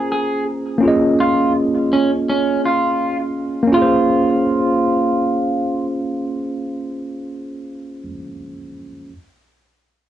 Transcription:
Already playing: A#3 C#4 F4 G#4 C5
0.12 G#4
0.78 A#3 C#4
0.83 F4 G#4
0.88 D#5
1.20 F4
1.93 C#4
2.29 C#4
2.66 F4
3.63 A#3
3.67 C#4
3.72 F4
3.77 G#4
3.82 C5

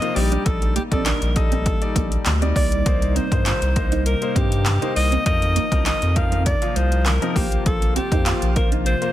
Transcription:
Already playing: C3 F3 A#3 F4 D#5
0.02 A#3 D#4 F4 C5, closed hi-hat
0.16 A#1 A#2 G3 D#4 G4 D5, muted clean electric guitar stroke, open hi-hat
0.32 D4, closed hi-hat
0.46 A#1 A4, kick, closed hi-hat
0.62 muted clean electric guitar stroke, closed hi-hat
0.76 A#3 G4, closed hi-hat
0.92 A#1 G3 C4 D#4 A4 D5, kick, closed hi-hat
1.06 D4 A#4, snare, clap, closed hi-hat
1.22 A#1, closed hi-hat
1.36 G3 D#4 A4 D#5, muted clean electric guitar stroke, kick, closed hi-hat
1.52 C4, closed hi-hat
1.66 kick, closed hi-hat
1.82 G3 D#4 D5, closed hi-hat
1.96 A#1 A#3, kick, closed hi-hat
2.12 closed hi-hat
2.26 D2, muted clean electric guitar stroke, snare, clap, closed hi-hat
2.42 G3 C4 D#4 D5, closed hi-hat
2.56 C2 A#3 D5, kick, open hi-hat
2.72 closed hi-hat
2.86 C2 C3 A#3 D#4 C5, kick, closed hi-hat
3.02 muted clean electric guitar stroke, closed hi-hat
3.16 C4 C5, closed hi-hat
3.32 G2 A#3 D#4 C5, kick, closed hi-hat
3.46 F4, snare, clap, closed hi-hat
3.62 C2, closed hi-hat
3.76 A#3 D#4 C5, muted clean electric guitar stroke, kick, closed hi-hat
3.92 D#4, closed hi-hat
4.06 A#4, closed hi-hat
4.22 A#3 D#4 C5, closed hi-hat
4.36 G2 C4 G4, kick, closed hi-hat
4.52 closed hi-hat
4.66 snare, clap, closed hi-hat
4.82 A#3 D#4 C5, closed hi-hat
4.96 C2 D#5, muted clean electric guitar stroke, open hi-hat
5.12 C4, closed hi-hat
5.26 F2 F3 D#4 A#4 D#5, kick, closed hi-hat
5.42 muted clean electric guitar stroke, closed hi-hat
5.56 A#3, closed hi-hat
5.72 C2 F3 C4 D#4 A#4, kick, closed hi-hat
5.86 D#4 D#5, snare, clap, closed hi-hat
6.02 F2, closed hi-hat
6.16 F3 D#4 A#4 F5, muted clean electric guitar stroke, kick, closed hi-hat
6.32 C4, closed hi-hat
6.46 D5, kick, closed hi-hat
6.62 F3 D#4 F4, closed hi-hat
6.76 C2 A#3 C5, closed hi-hat
6.92 closed hi-hat
7.06 A#4, muted clean electric guitar stroke, snare, clap, closed hi-hat
7.22 F3 C4 D#4 A#4, closed hi-hat
7.36 A#1 C3 A#3 F4 G4 C5, kick, open hi-hat
7.52 closed hi-hat
7.66 A#1 A4, kick, closed hi-hat
7.82 muted clean electric guitar stroke, closed hi-hat
7.96 C4 G4, closed hi-hat
8.12 F2 A#3 D#4 F4 C5, kick, closed hi-hat
8.26 F4, snare, clap, closed hi-hat
8.42 A#1, closed hi-hat
8.56 A#3 F4 A#4 C5, muted clean electric guitar stroke, kick, closed hi-hat
8.72 D#4, closed hi-hat
8.86 C5, closed hi-hat
9.02 A#3 F4 C5, closed hi-hat

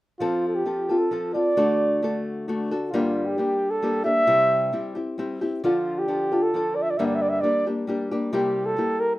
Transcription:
0.19 F3 C4 F4 A4
0.48 A4
0.55 G4
0.66 F3 C4 F4 A4
0.89 C4 F4 A4
0.98 A4
1.11 F3 C4 F4 A4
1.34 C4 F4 A4 D5
1.57 D3 A3 D4 F#4 A4
2.02 A3 D4 F#4 A4
2.48 A3 D4 F#4 A4
2.71 D4 F#4 A4
2.90 G2 D3 G3 A#3 D4 F4
2.95 G4
3.26 G4
3.38 G3 A#3 D4 G4
3.71 A4
3.82 G3 A#3 D4 G4
4.04 G3 A#3 D4 G4 E5
4.27 C3 G3 C4 E4 G4
4.73 G3 C4 E4 G4
4.95 C4 E4 G4
5.18 G3 C4 E4 G4
5.41 C4 E4 G4
5.64 D3 F3 D4 F4 A4
5.99 G4
6.08 F3 D4 F4 A4
6.32 D4 F4 A4
6.43 A4
6.54 F3 D4 F4 A4
6.75 D5
6.83 E5
6.91 D5
6.98 G2 D3 G3 A#3 D4 G4 E5
7.05 D5
7.15 E5
7.22 D5
7.29 E5
7.41 G3 A#3 D4 D5
7.45 G4
7.67 G3 A#3 D4 G4
7.87 G3 A#3 D4 G4
8.11 G3 A#3 D4 G4
8.33 C3 G3 A#3 E4 G4
8.66 A4
8.77 G3 A#3 E4 G4
9.00 A#4

